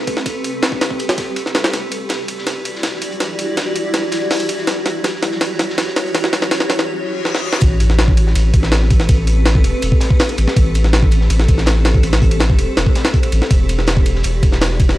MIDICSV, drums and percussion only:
0, 0, Header, 1, 2, 480
1, 0, Start_track
1, 0, Key_signature, 0, "minor"
1, 0, Tempo, 368098
1, 336, Time_signature, 4, 2, 24, 8
1, 19535, End_track
2, 0, Start_track
2, 0, Title_t, "Drums"
2, 95, Note_on_c, 9, 36, 94
2, 95, Note_on_c, 9, 51, 69
2, 108, Note_on_c, 9, 42, 60
2, 216, Note_off_c, 9, 42, 0
2, 216, Note_on_c, 9, 42, 43
2, 218, Note_on_c, 9, 38, 56
2, 225, Note_off_c, 9, 36, 0
2, 226, Note_off_c, 9, 51, 0
2, 335, Note_off_c, 9, 42, 0
2, 335, Note_on_c, 9, 42, 80
2, 336, Note_on_c, 9, 36, 107
2, 337, Note_on_c, 9, 51, 88
2, 349, Note_off_c, 9, 38, 0
2, 465, Note_off_c, 9, 42, 0
2, 467, Note_off_c, 9, 36, 0
2, 467, Note_off_c, 9, 51, 0
2, 578, Note_on_c, 9, 51, 65
2, 579, Note_on_c, 9, 42, 68
2, 709, Note_off_c, 9, 51, 0
2, 710, Note_off_c, 9, 42, 0
2, 814, Note_on_c, 9, 38, 111
2, 817, Note_off_c, 9, 38, 0
2, 817, Note_on_c, 9, 38, 111
2, 817, Note_on_c, 9, 51, 84
2, 826, Note_on_c, 9, 42, 86
2, 940, Note_on_c, 9, 36, 93
2, 948, Note_off_c, 9, 38, 0
2, 948, Note_off_c, 9, 51, 0
2, 957, Note_off_c, 9, 42, 0
2, 1060, Note_on_c, 9, 38, 100
2, 1060, Note_on_c, 9, 51, 79
2, 1061, Note_on_c, 9, 42, 62
2, 1070, Note_off_c, 9, 36, 0
2, 1181, Note_on_c, 9, 36, 88
2, 1191, Note_off_c, 9, 38, 0
2, 1191, Note_off_c, 9, 51, 0
2, 1192, Note_off_c, 9, 42, 0
2, 1294, Note_on_c, 9, 42, 87
2, 1302, Note_on_c, 9, 51, 60
2, 1311, Note_off_c, 9, 36, 0
2, 1423, Note_off_c, 9, 51, 0
2, 1423, Note_on_c, 9, 38, 100
2, 1423, Note_on_c, 9, 51, 75
2, 1424, Note_off_c, 9, 42, 0
2, 1534, Note_on_c, 9, 42, 70
2, 1537, Note_off_c, 9, 38, 0
2, 1537, Note_off_c, 9, 51, 0
2, 1537, Note_on_c, 9, 36, 99
2, 1537, Note_on_c, 9, 38, 110
2, 1537, Note_on_c, 9, 51, 78
2, 1664, Note_off_c, 9, 42, 0
2, 1667, Note_off_c, 9, 51, 0
2, 1668, Note_off_c, 9, 36, 0
2, 1668, Note_off_c, 9, 38, 0
2, 1778, Note_on_c, 9, 51, 61
2, 1781, Note_on_c, 9, 42, 87
2, 1903, Note_on_c, 9, 38, 37
2, 1908, Note_off_c, 9, 51, 0
2, 1912, Note_off_c, 9, 42, 0
2, 2016, Note_on_c, 9, 42, 67
2, 2018, Note_off_c, 9, 38, 0
2, 2018, Note_on_c, 9, 38, 100
2, 2018, Note_on_c, 9, 51, 77
2, 2139, Note_off_c, 9, 38, 0
2, 2139, Note_on_c, 9, 38, 41
2, 2141, Note_off_c, 9, 38, 0
2, 2141, Note_off_c, 9, 51, 0
2, 2141, Note_on_c, 9, 38, 108
2, 2141, Note_on_c, 9, 51, 79
2, 2146, Note_off_c, 9, 42, 0
2, 2256, Note_on_c, 9, 42, 94
2, 2261, Note_off_c, 9, 38, 0
2, 2261, Note_off_c, 9, 51, 0
2, 2261, Note_on_c, 9, 38, 49
2, 2261, Note_on_c, 9, 51, 86
2, 2386, Note_off_c, 9, 42, 0
2, 2392, Note_off_c, 9, 38, 0
2, 2392, Note_off_c, 9, 51, 0
2, 2497, Note_on_c, 9, 42, 72
2, 2499, Note_on_c, 9, 51, 67
2, 2627, Note_off_c, 9, 42, 0
2, 2629, Note_off_c, 9, 51, 0
2, 2726, Note_on_c, 9, 38, 118
2, 2732, Note_on_c, 9, 42, 86
2, 2736, Note_off_c, 9, 38, 0
2, 2736, Note_on_c, 9, 38, 48
2, 2736, Note_on_c, 9, 51, 86
2, 2862, Note_off_c, 9, 42, 0
2, 2867, Note_off_c, 9, 38, 0
2, 2867, Note_off_c, 9, 51, 0
2, 2974, Note_on_c, 9, 42, 68
2, 2977, Note_on_c, 9, 51, 67
2, 3105, Note_off_c, 9, 42, 0
2, 3106, Note_on_c, 9, 38, 45
2, 3107, Note_off_c, 9, 51, 0
2, 3216, Note_off_c, 9, 38, 0
2, 3216, Note_on_c, 9, 38, 54
2, 3216, Note_on_c, 9, 51, 90
2, 3224, Note_on_c, 9, 42, 92
2, 3347, Note_off_c, 9, 38, 0
2, 3347, Note_off_c, 9, 51, 0
2, 3354, Note_off_c, 9, 42, 0
2, 3456, Note_on_c, 9, 42, 67
2, 3459, Note_on_c, 9, 51, 68
2, 3586, Note_off_c, 9, 42, 0
2, 3586, Note_on_c, 9, 38, 52
2, 3590, Note_off_c, 9, 51, 0
2, 3694, Note_off_c, 9, 38, 0
2, 3694, Note_on_c, 9, 38, 56
2, 3694, Note_on_c, 9, 51, 87
2, 3699, Note_on_c, 9, 42, 93
2, 3705, Note_off_c, 9, 38, 0
2, 3705, Note_on_c, 9, 38, 108
2, 3814, Note_off_c, 9, 38, 0
2, 3814, Note_on_c, 9, 38, 43
2, 3824, Note_off_c, 9, 51, 0
2, 3830, Note_off_c, 9, 42, 0
2, 3935, Note_on_c, 9, 51, 67
2, 3944, Note_off_c, 9, 38, 0
2, 3948, Note_on_c, 9, 42, 66
2, 4065, Note_off_c, 9, 51, 0
2, 4067, Note_off_c, 9, 42, 0
2, 4067, Note_on_c, 9, 42, 44
2, 4177, Note_on_c, 9, 38, 59
2, 4177, Note_on_c, 9, 51, 88
2, 4182, Note_off_c, 9, 42, 0
2, 4182, Note_on_c, 9, 42, 93
2, 4307, Note_off_c, 9, 38, 0
2, 4307, Note_off_c, 9, 51, 0
2, 4312, Note_off_c, 9, 42, 0
2, 4417, Note_on_c, 9, 51, 67
2, 4424, Note_on_c, 9, 42, 65
2, 4548, Note_off_c, 9, 51, 0
2, 4554, Note_off_c, 9, 42, 0
2, 4657, Note_on_c, 9, 38, 62
2, 4657, Note_on_c, 9, 42, 84
2, 4657, Note_on_c, 9, 51, 85
2, 4788, Note_off_c, 9, 38, 0
2, 4788, Note_off_c, 9, 42, 0
2, 4788, Note_off_c, 9, 51, 0
2, 4892, Note_on_c, 9, 42, 66
2, 4897, Note_on_c, 9, 51, 66
2, 5023, Note_off_c, 9, 42, 0
2, 5027, Note_off_c, 9, 51, 0
2, 5132, Note_on_c, 9, 42, 77
2, 5134, Note_on_c, 9, 38, 69
2, 5134, Note_on_c, 9, 51, 93
2, 5263, Note_off_c, 9, 42, 0
2, 5264, Note_off_c, 9, 38, 0
2, 5264, Note_off_c, 9, 51, 0
2, 5370, Note_on_c, 9, 38, 108
2, 5374, Note_on_c, 9, 51, 69
2, 5382, Note_on_c, 9, 42, 68
2, 5500, Note_off_c, 9, 38, 0
2, 5505, Note_off_c, 9, 51, 0
2, 5513, Note_off_c, 9, 42, 0
2, 5615, Note_on_c, 9, 42, 85
2, 5617, Note_on_c, 9, 38, 70
2, 5617, Note_on_c, 9, 46, 82
2, 5738, Note_on_c, 9, 51, 43
2, 5746, Note_off_c, 9, 42, 0
2, 5747, Note_off_c, 9, 38, 0
2, 5747, Note_off_c, 9, 46, 0
2, 5855, Note_off_c, 9, 51, 0
2, 5855, Note_on_c, 9, 51, 79
2, 5859, Note_on_c, 9, 42, 68
2, 5977, Note_on_c, 9, 38, 37
2, 5986, Note_off_c, 9, 51, 0
2, 5989, Note_off_c, 9, 42, 0
2, 6094, Note_off_c, 9, 38, 0
2, 6094, Note_on_c, 9, 38, 76
2, 6094, Note_on_c, 9, 51, 91
2, 6102, Note_on_c, 9, 42, 93
2, 6225, Note_off_c, 9, 38, 0
2, 6225, Note_off_c, 9, 51, 0
2, 6233, Note_off_c, 9, 42, 0
2, 6334, Note_on_c, 9, 38, 77
2, 6334, Note_on_c, 9, 51, 68
2, 6341, Note_on_c, 9, 42, 75
2, 6464, Note_off_c, 9, 38, 0
2, 6464, Note_off_c, 9, 51, 0
2, 6471, Note_off_c, 9, 42, 0
2, 6573, Note_on_c, 9, 38, 122
2, 6576, Note_off_c, 9, 38, 0
2, 6576, Note_on_c, 9, 38, 75
2, 6576, Note_on_c, 9, 51, 87
2, 6586, Note_on_c, 9, 42, 82
2, 6706, Note_off_c, 9, 38, 0
2, 6706, Note_off_c, 9, 51, 0
2, 6717, Note_off_c, 9, 42, 0
2, 6814, Note_on_c, 9, 38, 84
2, 6814, Note_on_c, 9, 51, 71
2, 6821, Note_on_c, 9, 42, 62
2, 6932, Note_off_c, 9, 38, 0
2, 6932, Note_on_c, 9, 38, 49
2, 6944, Note_off_c, 9, 51, 0
2, 6952, Note_off_c, 9, 42, 0
2, 7054, Note_off_c, 9, 38, 0
2, 7054, Note_on_c, 9, 38, 88
2, 7054, Note_on_c, 9, 51, 92
2, 7060, Note_on_c, 9, 42, 96
2, 7184, Note_off_c, 9, 38, 0
2, 7184, Note_off_c, 9, 51, 0
2, 7190, Note_off_c, 9, 42, 0
2, 7293, Note_on_c, 9, 38, 83
2, 7293, Note_on_c, 9, 51, 68
2, 7303, Note_on_c, 9, 42, 67
2, 7423, Note_off_c, 9, 38, 0
2, 7423, Note_off_c, 9, 51, 0
2, 7426, Note_on_c, 9, 38, 53
2, 7433, Note_off_c, 9, 42, 0
2, 7536, Note_off_c, 9, 38, 0
2, 7536, Note_on_c, 9, 38, 86
2, 7536, Note_on_c, 9, 51, 87
2, 7539, Note_on_c, 9, 42, 94
2, 7548, Note_off_c, 9, 38, 0
2, 7548, Note_on_c, 9, 38, 125
2, 7660, Note_off_c, 9, 38, 0
2, 7660, Note_on_c, 9, 38, 41
2, 7666, Note_off_c, 9, 51, 0
2, 7669, Note_off_c, 9, 42, 0
2, 7776, Note_off_c, 9, 38, 0
2, 7776, Note_on_c, 9, 38, 91
2, 7776, Note_on_c, 9, 51, 70
2, 7784, Note_on_c, 9, 42, 61
2, 7902, Note_off_c, 9, 42, 0
2, 7902, Note_on_c, 9, 42, 42
2, 7906, Note_off_c, 9, 38, 0
2, 7906, Note_off_c, 9, 51, 0
2, 8014, Note_on_c, 9, 38, 97
2, 8014, Note_on_c, 9, 51, 93
2, 8026, Note_off_c, 9, 42, 0
2, 8026, Note_on_c, 9, 42, 83
2, 8136, Note_off_c, 9, 38, 0
2, 8136, Note_on_c, 9, 38, 81
2, 8145, Note_off_c, 9, 51, 0
2, 8157, Note_off_c, 9, 42, 0
2, 8254, Note_off_c, 9, 38, 0
2, 8254, Note_on_c, 9, 38, 95
2, 8254, Note_on_c, 9, 51, 71
2, 8256, Note_on_c, 9, 42, 70
2, 8375, Note_off_c, 9, 38, 0
2, 8375, Note_on_c, 9, 38, 88
2, 8384, Note_off_c, 9, 51, 0
2, 8386, Note_off_c, 9, 42, 0
2, 8493, Note_off_c, 9, 38, 0
2, 8493, Note_on_c, 9, 38, 96
2, 8493, Note_on_c, 9, 51, 88
2, 8500, Note_off_c, 9, 38, 0
2, 8500, Note_on_c, 9, 38, 124
2, 8508, Note_on_c, 9, 42, 90
2, 8611, Note_off_c, 9, 38, 0
2, 8611, Note_on_c, 9, 38, 88
2, 8623, Note_off_c, 9, 51, 0
2, 8638, Note_off_c, 9, 42, 0
2, 8733, Note_off_c, 9, 38, 0
2, 8733, Note_on_c, 9, 38, 102
2, 8733, Note_on_c, 9, 51, 72
2, 8744, Note_on_c, 9, 42, 68
2, 8854, Note_off_c, 9, 38, 0
2, 8854, Note_on_c, 9, 38, 91
2, 8863, Note_off_c, 9, 51, 0
2, 8875, Note_off_c, 9, 42, 0
2, 8984, Note_off_c, 9, 38, 0
2, 9455, Note_on_c, 9, 38, 63
2, 9578, Note_off_c, 9, 38, 0
2, 9578, Note_on_c, 9, 38, 65
2, 9709, Note_off_c, 9, 38, 0
2, 9813, Note_on_c, 9, 38, 86
2, 9932, Note_on_c, 9, 42, 87
2, 9932, Note_on_c, 9, 51, 93
2, 9934, Note_on_c, 9, 36, 114
2, 9944, Note_off_c, 9, 38, 0
2, 10062, Note_off_c, 9, 42, 0
2, 10062, Note_off_c, 9, 51, 0
2, 10064, Note_off_c, 9, 36, 0
2, 10174, Note_on_c, 9, 51, 68
2, 10179, Note_on_c, 9, 42, 66
2, 10299, Note_on_c, 9, 38, 44
2, 10304, Note_off_c, 9, 51, 0
2, 10310, Note_off_c, 9, 42, 0
2, 10415, Note_off_c, 9, 38, 0
2, 10415, Note_on_c, 9, 38, 117
2, 10415, Note_on_c, 9, 51, 87
2, 10417, Note_on_c, 9, 42, 91
2, 10432, Note_off_c, 9, 38, 0
2, 10432, Note_on_c, 9, 38, 118
2, 10537, Note_on_c, 9, 36, 99
2, 10545, Note_off_c, 9, 51, 0
2, 10547, Note_off_c, 9, 42, 0
2, 10562, Note_off_c, 9, 38, 0
2, 10654, Note_on_c, 9, 42, 67
2, 10658, Note_on_c, 9, 51, 69
2, 10667, Note_off_c, 9, 36, 0
2, 10783, Note_on_c, 9, 38, 46
2, 10785, Note_off_c, 9, 42, 0
2, 10788, Note_off_c, 9, 51, 0
2, 10895, Note_on_c, 9, 51, 93
2, 10898, Note_on_c, 9, 42, 89
2, 10914, Note_off_c, 9, 38, 0
2, 11026, Note_off_c, 9, 51, 0
2, 11028, Note_off_c, 9, 42, 0
2, 11130, Note_on_c, 9, 42, 61
2, 11132, Note_on_c, 9, 51, 68
2, 11133, Note_on_c, 9, 36, 92
2, 11254, Note_on_c, 9, 38, 40
2, 11261, Note_off_c, 9, 42, 0
2, 11263, Note_off_c, 9, 36, 0
2, 11263, Note_off_c, 9, 51, 0
2, 11265, Note_off_c, 9, 38, 0
2, 11265, Note_on_c, 9, 38, 51
2, 11368, Note_off_c, 9, 38, 0
2, 11368, Note_on_c, 9, 38, 120
2, 11368, Note_on_c, 9, 51, 88
2, 11379, Note_off_c, 9, 38, 0
2, 11379, Note_on_c, 9, 38, 116
2, 11380, Note_on_c, 9, 42, 93
2, 11498, Note_off_c, 9, 38, 0
2, 11498, Note_off_c, 9, 51, 0
2, 11498, Note_on_c, 9, 38, 39
2, 11511, Note_off_c, 9, 42, 0
2, 11611, Note_on_c, 9, 51, 69
2, 11612, Note_on_c, 9, 36, 98
2, 11627, Note_on_c, 9, 42, 72
2, 11629, Note_off_c, 9, 38, 0
2, 11732, Note_off_c, 9, 42, 0
2, 11732, Note_on_c, 9, 38, 58
2, 11732, Note_on_c, 9, 42, 42
2, 11741, Note_off_c, 9, 51, 0
2, 11743, Note_off_c, 9, 36, 0
2, 11851, Note_on_c, 9, 51, 89
2, 11852, Note_on_c, 9, 36, 115
2, 11859, Note_off_c, 9, 42, 0
2, 11859, Note_on_c, 9, 42, 86
2, 11862, Note_off_c, 9, 38, 0
2, 11981, Note_off_c, 9, 51, 0
2, 11983, Note_off_c, 9, 36, 0
2, 11989, Note_off_c, 9, 42, 0
2, 12090, Note_on_c, 9, 51, 68
2, 12097, Note_on_c, 9, 42, 64
2, 12220, Note_off_c, 9, 51, 0
2, 12227, Note_off_c, 9, 42, 0
2, 12330, Note_on_c, 9, 38, 113
2, 12330, Note_on_c, 9, 51, 89
2, 12334, Note_on_c, 9, 42, 93
2, 12341, Note_off_c, 9, 38, 0
2, 12341, Note_on_c, 9, 38, 119
2, 12455, Note_on_c, 9, 36, 97
2, 12460, Note_off_c, 9, 51, 0
2, 12465, Note_off_c, 9, 42, 0
2, 12471, Note_off_c, 9, 38, 0
2, 12568, Note_on_c, 9, 42, 63
2, 12573, Note_on_c, 9, 51, 71
2, 12586, Note_off_c, 9, 36, 0
2, 12699, Note_off_c, 9, 42, 0
2, 12703, Note_off_c, 9, 51, 0
2, 12805, Note_on_c, 9, 42, 92
2, 12811, Note_on_c, 9, 51, 90
2, 12935, Note_off_c, 9, 42, 0
2, 12936, Note_on_c, 9, 36, 95
2, 12941, Note_off_c, 9, 51, 0
2, 13047, Note_on_c, 9, 38, 118
2, 13051, Note_on_c, 9, 42, 64
2, 13056, Note_on_c, 9, 51, 70
2, 13066, Note_off_c, 9, 36, 0
2, 13177, Note_on_c, 9, 36, 94
2, 13178, Note_off_c, 9, 38, 0
2, 13181, Note_off_c, 9, 42, 0
2, 13186, Note_off_c, 9, 51, 0
2, 13290, Note_on_c, 9, 42, 89
2, 13299, Note_on_c, 9, 38, 122
2, 13299, Note_on_c, 9, 46, 83
2, 13308, Note_off_c, 9, 36, 0
2, 13420, Note_off_c, 9, 42, 0
2, 13420, Note_on_c, 9, 51, 45
2, 13429, Note_off_c, 9, 38, 0
2, 13429, Note_off_c, 9, 46, 0
2, 13526, Note_on_c, 9, 42, 61
2, 13537, Note_off_c, 9, 51, 0
2, 13537, Note_on_c, 9, 51, 70
2, 13656, Note_on_c, 9, 38, 41
2, 13657, Note_off_c, 9, 42, 0
2, 13660, Note_off_c, 9, 38, 0
2, 13660, Note_on_c, 9, 38, 51
2, 13668, Note_off_c, 9, 51, 0
2, 13776, Note_on_c, 9, 36, 112
2, 13777, Note_on_c, 9, 51, 88
2, 13779, Note_on_c, 9, 42, 82
2, 13791, Note_off_c, 9, 38, 0
2, 13907, Note_off_c, 9, 36, 0
2, 13908, Note_off_c, 9, 51, 0
2, 13910, Note_off_c, 9, 42, 0
2, 14009, Note_on_c, 9, 42, 62
2, 14020, Note_on_c, 9, 51, 69
2, 14139, Note_off_c, 9, 42, 0
2, 14140, Note_on_c, 9, 38, 43
2, 14150, Note_off_c, 9, 51, 0
2, 14250, Note_on_c, 9, 42, 89
2, 14252, Note_off_c, 9, 38, 0
2, 14252, Note_on_c, 9, 38, 108
2, 14254, Note_off_c, 9, 38, 0
2, 14254, Note_on_c, 9, 38, 114
2, 14254, Note_on_c, 9, 51, 89
2, 14377, Note_on_c, 9, 36, 97
2, 14381, Note_off_c, 9, 42, 0
2, 14385, Note_off_c, 9, 38, 0
2, 14385, Note_off_c, 9, 51, 0
2, 14486, Note_on_c, 9, 42, 72
2, 14498, Note_on_c, 9, 51, 68
2, 14507, Note_off_c, 9, 36, 0
2, 14616, Note_off_c, 9, 42, 0
2, 14617, Note_on_c, 9, 38, 46
2, 14628, Note_off_c, 9, 51, 0
2, 14732, Note_on_c, 9, 42, 90
2, 14737, Note_on_c, 9, 51, 93
2, 14747, Note_off_c, 9, 38, 0
2, 14859, Note_on_c, 9, 38, 52
2, 14863, Note_off_c, 9, 42, 0
2, 14867, Note_off_c, 9, 51, 0
2, 14971, Note_on_c, 9, 42, 65
2, 14976, Note_on_c, 9, 36, 95
2, 14979, Note_on_c, 9, 51, 69
2, 14990, Note_off_c, 9, 38, 0
2, 15095, Note_on_c, 9, 38, 61
2, 15100, Note_off_c, 9, 38, 0
2, 15100, Note_on_c, 9, 38, 39
2, 15102, Note_off_c, 9, 42, 0
2, 15106, Note_off_c, 9, 36, 0
2, 15109, Note_off_c, 9, 51, 0
2, 15207, Note_off_c, 9, 38, 0
2, 15207, Note_on_c, 9, 38, 111
2, 15208, Note_on_c, 9, 42, 87
2, 15217, Note_off_c, 9, 38, 0
2, 15217, Note_on_c, 9, 38, 119
2, 15217, Note_on_c, 9, 51, 87
2, 15330, Note_off_c, 9, 38, 0
2, 15330, Note_on_c, 9, 38, 41
2, 15338, Note_off_c, 9, 42, 0
2, 15348, Note_off_c, 9, 51, 0
2, 15450, Note_on_c, 9, 42, 71
2, 15453, Note_off_c, 9, 38, 0
2, 15453, Note_on_c, 9, 38, 106
2, 15453, Note_on_c, 9, 51, 83
2, 15576, Note_on_c, 9, 36, 90
2, 15577, Note_off_c, 9, 42, 0
2, 15577, Note_on_c, 9, 42, 40
2, 15584, Note_off_c, 9, 38, 0
2, 15584, Note_off_c, 9, 51, 0
2, 15687, Note_off_c, 9, 42, 0
2, 15687, Note_on_c, 9, 42, 85
2, 15692, Note_on_c, 9, 51, 62
2, 15706, Note_off_c, 9, 36, 0
2, 15816, Note_off_c, 9, 51, 0
2, 15816, Note_on_c, 9, 38, 106
2, 15816, Note_on_c, 9, 51, 77
2, 15817, Note_off_c, 9, 42, 0
2, 15933, Note_on_c, 9, 36, 89
2, 15936, Note_on_c, 9, 42, 68
2, 15947, Note_off_c, 9, 38, 0
2, 15947, Note_off_c, 9, 51, 0
2, 16055, Note_on_c, 9, 51, 64
2, 16064, Note_off_c, 9, 36, 0
2, 16067, Note_off_c, 9, 42, 0
2, 16167, Note_on_c, 9, 38, 117
2, 16175, Note_off_c, 9, 38, 0
2, 16175, Note_off_c, 9, 51, 0
2, 16175, Note_on_c, 9, 38, 115
2, 16175, Note_on_c, 9, 51, 88
2, 16179, Note_on_c, 9, 42, 83
2, 16296, Note_on_c, 9, 36, 96
2, 16305, Note_off_c, 9, 38, 0
2, 16305, Note_off_c, 9, 51, 0
2, 16310, Note_off_c, 9, 42, 0
2, 16411, Note_on_c, 9, 51, 72
2, 16414, Note_on_c, 9, 42, 72
2, 16426, Note_off_c, 9, 36, 0
2, 16542, Note_off_c, 9, 51, 0
2, 16545, Note_off_c, 9, 42, 0
2, 16652, Note_on_c, 9, 38, 109
2, 16652, Note_on_c, 9, 51, 80
2, 16658, Note_on_c, 9, 42, 87
2, 16776, Note_on_c, 9, 36, 84
2, 16783, Note_off_c, 9, 38, 0
2, 16783, Note_off_c, 9, 51, 0
2, 16789, Note_off_c, 9, 42, 0
2, 16891, Note_on_c, 9, 42, 66
2, 16892, Note_on_c, 9, 51, 64
2, 16897, Note_on_c, 9, 38, 122
2, 16906, Note_off_c, 9, 36, 0
2, 17013, Note_off_c, 9, 38, 0
2, 17013, Note_off_c, 9, 51, 0
2, 17013, Note_on_c, 9, 38, 105
2, 17013, Note_on_c, 9, 51, 78
2, 17022, Note_off_c, 9, 42, 0
2, 17128, Note_on_c, 9, 42, 83
2, 17133, Note_on_c, 9, 36, 87
2, 17143, Note_off_c, 9, 38, 0
2, 17143, Note_off_c, 9, 51, 0
2, 17254, Note_on_c, 9, 51, 61
2, 17258, Note_off_c, 9, 42, 0
2, 17263, Note_off_c, 9, 36, 0
2, 17373, Note_off_c, 9, 51, 0
2, 17373, Note_on_c, 9, 51, 70
2, 17380, Note_on_c, 9, 42, 67
2, 17495, Note_on_c, 9, 38, 42
2, 17497, Note_off_c, 9, 38, 0
2, 17497, Note_on_c, 9, 38, 49
2, 17503, Note_off_c, 9, 51, 0
2, 17510, Note_off_c, 9, 42, 0
2, 17608, Note_on_c, 9, 42, 80
2, 17613, Note_on_c, 9, 51, 90
2, 17614, Note_on_c, 9, 36, 112
2, 17628, Note_off_c, 9, 38, 0
2, 17738, Note_off_c, 9, 42, 0
2, 17743, Note_off_c, 9, 51, 0
2, 17744, Note_off_c, 9, 36, 0
2, 17850, Note_on_c, 9, 42, 67
2, 17855, Note_on_c, 9, 51, 72
2, 17978, Note_on_c, 9, 38, 44
2, 17980, Note_off_c, 9, 42, 0
2, 17986, Note_off_c, 9, 51, 0
2, 18081, Note_on_c, 9, 42, 81
2, 18095, Note_off_c, 9, 38, 0
2, 18095, Note_on_c, 9, 38, 114
2, 18095, Note_on_c, 9, 51, 90
2, 18106, Note_off_c, 9, 38, 0
2, 18106, Note_on_c, 9, 38, 124
2, 18212, Note_off_c, 9, 42, 0
2, 18215, Note_on_c, 9, 36, 97
2, 18225, Note_off_c, 9, 51, 0
2, 18236, Note_off_c, 9, 38, 0
2, 18331, Note_on_c, 9, 42, 68
2, 18333, Note_on_c, 9, 51, 70
2, 18345, Note_off_c, 9, 36, 0
2, 18454, Note_on_c, 9, 38, 43
2, 18461, Note_off_c, 9, 42, 0
2, 18463, Note_off_c, 9, 51, 0
2, 18559, Note_on_c, 9, 42, 95
2, 18572, Note_on_c, 9, 51, 91
2, 18584, Note_off_c, 9, 38, 0
2, 18690, Note_off_c, 9, 42, 0
2, 18702, Note_off_c, 9, 51, 0
2, 18813, Note_on_c, 9, 42, 70
2, 18814, Note_on_c, 9, 36, 97
2, 18814, Note_on_c, 9, 51, 66
2, 18929, Note_on_c, 9, 38, 59
2, 18939, Note_off_c, 9, 38, 0
2, 18939, Note_on_c, 9, 38, 39
2, 18944, Note_off_c, 9, 36, 0
2, 18944, Note_off_c, 9, 42, 0
2, 18945, Note_off_c, 9, 51, 0
2, 19052, Note_off_c, 9, 38, 0
2, 19052, Note_on_c, 9, 38, 115
2, 19058, Note_off_c, 9, 38, 0
2, 19058, Note_on_c, 9, 38, 118
2, 19058, Note_on_c, 9, 51, 93
2, 19065, Note_on_c, 9, 42, 91
2, 19176, Note_off_c, 9, 38, 0
2, 19176, Note_on_c, 9, 38, 48
2, 19188, Note_off_c, 9, 51, 0
2, 19195, Note_off_c, 9, 42, 0
2, 19295, Note_on_c, 9, 36, 97
2, 19296, Note_on_c, 9, 51, 71
2, 19297, Note_on_c, 9, 42, 71
2, 19307, Note_off_c, 9, 38, 0
2, 19418, Note_on_c, 9, 38, 59
2, 19425, Note_off_c, 9, 36, 0
2, 19427, Note_off_c, 9, 42, 0
2, 19427, Note_off_c, 9, 51, 0
2, 19431, Note_on_c, 9, 42, 43
2, 19535, Note_off_c, 9, 38, 0
2, 19535, Note_off_c, 9, 42, 0
2, 19535, End_track
0, 0, End_of_file